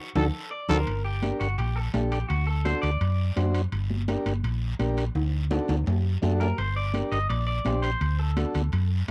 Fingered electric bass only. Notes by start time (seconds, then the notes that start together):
0.15 D2
0.69 D2
0.88 G1
1.41 G1
1.58 A#1
1.94 A#1
2.30 D2
2.83 D2
3.01 F#2
3.37 F#2
3.72 G1
4.26 G1
4.43 A#1
4.79 A#1
5.15 D2
5.69 D2
5.87 F#2
6.23 F#2
6.58 G1
7.12 G1
7.30 A#1
7.66 A#1
8.01 D2
8.55 D2
8.73 F#2